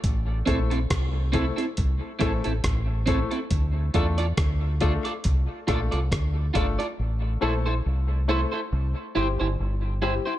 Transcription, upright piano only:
X:1
M:4/4
L:1/16
Q:"Swing 16ths" 1/4=69
K:Dm
V:1 name="Upright piano"
z2 [A,CEA] z3 [A,CEA] [EA] z2 [A,CEA] [EA] z2 [A,CEA] [EA] | z2 [A,DFA] z3 [A,DFA] [FA] z2 [A,DFA] [FA] z2 [A,DFA] [FA] | z2 [A,CEA] z3 [A,CEA] [EA] z2 [G,CEG] [EG] z2 [G,CEG] z |]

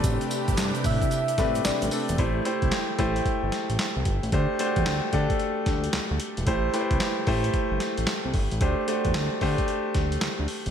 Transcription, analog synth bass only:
X:1
M:4/4
L:1/16
Q:"Swing 16ths" 1/4=112
K:Am
V:1 name="Analog synth bass" clef=bass
A,,, z2 G,,, G,, z A,, z3 A,,2 A,,, A,,, z E,,, | A,,,2 z C,, z2 A,,,2 z G,,, z A,,, z C,, G,,, A,,, | D,, z2 E,, D,, z D, z3 D,,2 D,, D,, z E,,, | A,,,2 z C,, z2 A,,,2 z G,,, z A,,, z C,, G,,, A,,, |
D,, z2 E,, D,, z D, z3 D,,2 D,, D,, z E,,, |]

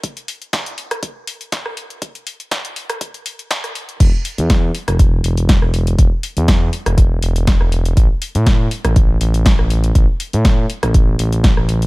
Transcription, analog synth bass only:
X:1
M:4/4
L:1/16
Q:"Swing 16ths" 1/4=121
K:Am
V:1 name="Analog synth bass" clef=bass
z16 | z16 | E,,, z2 E,,3 z E,,,3 E,,,3 E,,,3 | E,,, z2 E,,3 z E,,,3 E,,,3 E,,,3 |
A,,, z2 A,,3 z A,,,3 A,,,3 A,,,3 | A,,, z2 A,,3 z A,,,3 A,,,3 A,,,3 |]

